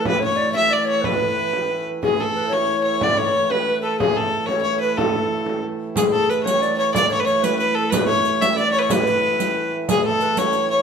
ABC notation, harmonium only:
X:1
M:6/8
L:1/8
Q:3/8=122
K:A
V:1 name="Harmonium" clef=bass
[A,,E,]6- | [A,,E,]6 | [A,,E,]6- | [A,,E,]6- |
[A,,E,]6- | [A,,E,]6 | [A,,E,]6- | [A,,E,]6- |
[A,,E,]6- | [A,,E,]6 | [A,,E,]6 |]